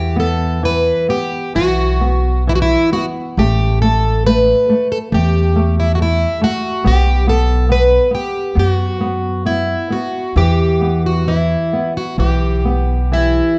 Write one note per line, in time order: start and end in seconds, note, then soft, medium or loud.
0.00 0.90 E2 medium
0.00 0.62 E3 medium
0.00 0.19 G4 medium
0.16 0.61 B3 soft
0.16 0.65 A4 medium
0.63 1.08 E3 soft
0.63 1.10 B4 medium
1.09 1.54 B3 soft
1.09 1.55 G4 medium
1.55 2.74 B1 medium
1.55 2.00 E3 soft
1.55 2.43 F#4 medium
2.01 2.45 B3 soft
2.47 2.91 E3 soft
2.47 2.52 E4 medium
2.56 2.62 F#4 medium
2.62 2.91 E4 medium
2.92 3.36 B3 medium
2.92 3.05 F#4 medium
3.37 4.51 A1 medium
3.37 3.81 A3 medium
3.37 3.82 G4 medium
3.82 4.25 A3 soft
3.82 4.26 A4 medium
4.26 4.68 A3 soft
4.26 4.87 B4 medium
4.69 5.11 A3 soft
4.92 4.98 A4 medium
5.12 6.25 E2 medium
5.12 5.55 A3 medium
5.12 5.75 G4 medium
5.56 5.98 A3 medium
5.80 5.94 E4 medium
5.95 6.01 F#4 medium
5.99 6.40 A3 soft
5.99 6.41 E4 medium
6.41 6.84 A3 medium
6.41 6.83 F#4 medium
6.84 7.97 B1 medium
6.84 7.26 B3 medium
6.84 7.29 G4 medium
7.27 7.68 B3 medium
7.27 7.68 A4 medium
7.69 8.10 B3 medium
7.69 8.11 B4 medium
8.11 8.54 B3 soft
8.11 8.59 G4 medium
8.55 9.73 F#2 medium
8.55 8.99 B3 medium
8.59 9.43 F#4 medium
9.01 9.44 B3 medium
9.45 9.89 B3 soft
9.45 9.93 E4 medium
9.90 10.34 B3 medium
9.90 10.34 F#4 medium
10.36 11.55 E2 medium
10.36 11.26 E3 medium
10.36 11.06 G4 medium
10.81 11.26 B3 soft
11.06 11.29 F#4 medium
11.28 11.72 E3 medium
11.28 11.92 E4 medium
11.73 12.17 B3 soft
11.97 12.19 F#4 medium
12.18 13.40 B1 medium
12.18 12.63 E3 medium
12.18 13.56 G4 medium
12.65 13.11 B3 soft
13.12 13.58 E3 soft
13.12 13.57 E4 medium